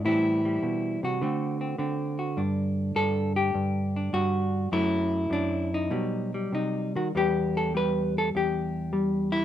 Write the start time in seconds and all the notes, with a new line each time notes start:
0.05 A2 E3 G3 C4 E4
0.45 G3
0.63 B2
1.03 C3 F#4
1.21 D3 A3 C4
1.61 C4
1.78 D3 C4
2.19 F#4
2.37 G2 D4
2.96 G2 A4
3.36 G4
3.54 G2
3.96 D4
4.13 G2 F#4
4.72 F#2 F#3 A3 E4
5.30 F#2 D4
5.74 D#4
5.91 B2 F#3 G3
6.34 G3
6.52 C3 D#4
6.96 D#3 F#4
7.15 E2 G3 B3 G4
7.57 A4
7.74 G3 B4
8.18 A4
8.35 E2 G4
8.93 G3
9.32 E4